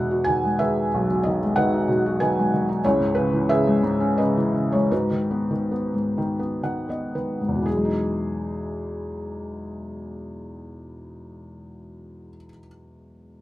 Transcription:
0.00 0.88 E2 medium
0.00 1.10 B2 medium
0.00 0.28 D#3 soft
0.00 0.43 G#3 soft
0.00 1.05 B3 soft
0.00 0.60 G#4 soft
0.00 0.60 B4 medium
0.00 1.24 D#5 medium
0.00 0.59 E5 medium
0.00 0.28 F#5 medium
0.11 1.37 F#4 soft
0.24 0.60 D#3 soft
0.24 0.59 G#5 medium
0.45 1.42 G#3 soft
0.59 1.25 D#3 soft
0.59 1.52 G#4 medium
0.59 1.52 B4 medium
0.59 1.20 E5 medium
0.94 2.81 B1 medium
1.10 1.87 B2 soft
1.24 1.56 D#3 medium
1.24 1.53 D#5 medium
1.43 2.37 G#3 medium
1.56 2.21 D#3 medium
1.56 2.19 B4 medium
1.56 2.19 D#5 medium
1.56 2.16 F#5 medium
1.73 2.67 D#4 medium
1.88 2.81 B2 medium
2.06 2.82 F#4 medium
2.20 2.52 D#3 medium
2.20 2.80 B4 medium
2.20 2.80 D#5 medium
2.20 2.85 G#5 medium
2.39 2.84 G#3 medium
2.54 2.83 D#3 medium
2.69 2.84 D#4 medium
2.85 4.88 C#2 medium
2.85 3.79 E4 medium
2.85 3.48 G#4 medium
2.85 3.14 C#5 medium
3.00 3.82 G#2 medium
3.15 3.49 C#3 medium
3.15 3.49 B4 medium
3.33 4.36 E3 medium
3.49 4.18 C#3 medium
3.49 4.17 G#4 medium
3.49 4.17 B4 medium
3.49 4.20 E5 medium
3.67 4.72 G#3 medium
3.83 4.88 G#2 medium
4.00 4.89 C#4 medium
4.18 4.52 C#3 medium
4.18 4.88 G#4 medium
4.18 4.88 B4 medium
4.18 4.74 D#5 medium
4.38 4.90 E3 medium
4.54 4.90 C#3 medium
4.72 4.91 G#3 medium
4.72 4.92 C#5 medium
4.91 5.92 G#2 medium
4.91 6.59 D#4 soft
4.91 6.59 F#4 soft
4.91 6.60 B4 medium
5.11 5.49 D#3 soft
5.31 5.70 B3 soft
5.51 6.16 D#3 soft
5.72 6.38 B3 medium
5.94 7.39 G#2 soft
6.18 6.62 D#3 medium
6.39 6.87 B3 soft
6.63 7.14 D#3 soft
6.63 6.87 F#5 medium
6.89 7.65 B3 soft
6.89 7.13 D#5 soft
7.15 7.66 D#3 soft
7.15 7.64 B4 soft
7.41 7.66 G#2 soft
7.48 12.30 E2 soft
7.55 12.36 B2 soft
7.62 12.43 E3 soft
7.62 12.47 G#4 medium
7.70 12.51 F#3 soft
7.77 12.58 G#3 soft
7.85 12.66 D#4 medium

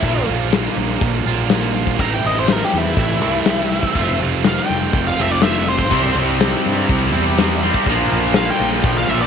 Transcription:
0.00 0.22 A#1 loud
0.00 1.25 A#2 medium
0.00 1.25 D3 loud
0.00 0.26 E4 medium
0.00 kick medium
0.00 open hi-hat medium
0.05 1.26 F3 medium
0.05 1.26 A#3 medium
0.05 1.25 F4 loud
0.28 0.67 A#1 medium
0.28 open hi-hat soft
0.52 snare loud
0.52 open hi-hat medium
0.76 0.96 A#1 medium
0.76 open hi-hat medium
1.01 1.21 A#1 loud
1.01 kick loud
1.01 open hi-hat medium
1.25 1.99 A#1 medium
1.25 1.50 F3 medium
1.25 1.50 A#3 medium
1.25 1.50 F4 medium
1.25 open hi-hat medium
1.29 1.49 A#2 medium
1.29 1.50 D3 medium
1.50 1.98 A#2 medium
1.50 1.99 D3 medium
1.50 1.99 F3 medium
1.50 2.00 A#3 medium
1.50 snare loud
1.50 open hi-hat medium
1.54 2.00 F4 medium
1.75 open hi-hat medium
1.87 kick medium
1.98 2.19 A1 medium
1.98 3.20 A2 medium
1.98 3.21 E3 medium
1.98 3.21 A3 medium
1.98 3.21 C4 loud
1.98 2.14 A#5 loud
1.98 kick medium
1.98 open hi-hat medium
2.02 3.20 E4 medium
2.14 2.25 G5 medium
2.23 2.62 A1 medium
2.23 2.37 D#5 medium
2.23 open hi-hat medium
2.40 2.50 C5 medium
2.48 snare loud
2.48 open hi-hat medium
2.52 2.64 A#4 medium
2.64 2.78 G4 medium
2.72 2.92 E2 medium
2.72 open hi-hat medium
2.78 4.18 E4 medium
2.97 3.21 A1 loud
2.97 kick loud
2.97 open hi-hat medium
3.21 3.78 C2 medium
3.21 3.45 E3 medium
3.21 3.46 A3 medium
3.21 3.48 C4 medium
3.21 3.45 E4 medium
3.21 open hi-hat soft
3.25 3.44 A2 medium
3.45 3.93 A2 medium
3.45 3.94 E3 medium
3.45 3.95 A3 medium
3.45 3.97 C4 medium
3.45 snare loud
3.45 open hi-hat medium
3.50 3.96 E4 medium
3.70 open hi-hat medium
3.83 kick medium
3.95 4.14 F1 medium
3.95 5.16 F3 medium
3.95 5.17 A3 medium
3.95 5.17 C4 medium
3.95 5.16 F4 loud
3.95 kick medium
3.95 open hi-hat medium
4.20 4.58 F1 medium
4.20 open hi-hat medium
4.44 4.58 F5 medium
4.44 snare loud
4.44 open hi-hat medium
4.59 5.06 G5 medium
4.69 4.89 F1 medium
4.69 open hi-hat medium
4.93 5.12 F1 loud
4.93 kick loud
4.93 open hi-hat medium
5.07 5.18 F5 medium
5.17 5.91 F1 medium
5.17 5.42 A3 medium
5.17 5.41 C4 medium
5.17 5.40 F4 medium
5.17 snare soft
5.17 open hi-hat medium
5.21 5.40 F3 medium
5.21 5.31 E5 medium
5.31 5.43 D5 medium
5.41 5.89 F3 medium
5.41 5.90 A3 medium
5.41 5.91 C4 medium
5.41 5.66 E5 medium
5.41 snare loud
5.41 open hi-hat medium
5.46 5.91 F4 medium
5.67 6.15 C5 medium
5.67 open hi-hat medium
5.79 kick medium
5.91 6.10 C2 loud
5.91 7.12 C3 medium
5.91 7.12 G3 loud
5.91 7.13 C4 medium
5.91 7.11 E4 loud
5.91 kick medium
5.91 open hi-hat medium
6.15 6.53 C2 medium
6.15 open hi-hat medium
6.40 snare loud
6.40 open hi-hat medium
6.65 6.84 G2 medium
6.65 open hi-hat medium
6.89 7.14 C2 medium
6.89 kick loud
6.89 open hi-hat medium
7.12 7.70 E2 medium
7.12 7.37 G3 medium
7.12 7.37 C4 medium
7.12 7.36 E4 medium
7.12 open hi-hat medium
7.16 7.36 C3 medium
7.38 7.85 C3 medium
7.38 7.86 G3 medium
7.38 7.86 C4 medium
7.38 7.87 E4 medium
7.38 snare loud
7.38 open hi-hat medium
7.63 7.86 C3 medium
7.63 7.86 G3 medium
7.63 7.85 C4 medium
7.63 open hi-hat medium
7.74 kick medium
7.86 8.06 A#1 loud
7.86 9.07 A#2 medium
7.86 9.08 D3 medium
7.86 9.08 F3 medium
7.86 9.09 A#3 medium
7.86 9.08 F4 loud
7.86 kick medium
7.86 open hi-hat medium
8.09 8.49 A#1 medium
8.09 open hi-hat medium
8.34 8.48 F5 medium
8.34 snare loud
8.34 open hi-hat medium
8.50 8.96 G5 medium
8.59 8.79 A#1 medium
8.59 open hi-hat medium
8.83 9.03 A#1 loud
8.83 kick loud
8.83 open hi-hat medium
8.97 9.09 F5 medium
9.08 9.27 A#1 medium
9.08 9.27 D3 medium
9.08 9.27 F3 medium
9.08 9.27 A#3 medium
9.08 9.27 F4 medium
9.08 9.21 E5 medium
9.08 open hi-hat medium
9.13 9.27 A#2 medium
9.22 9.27 D5 medium

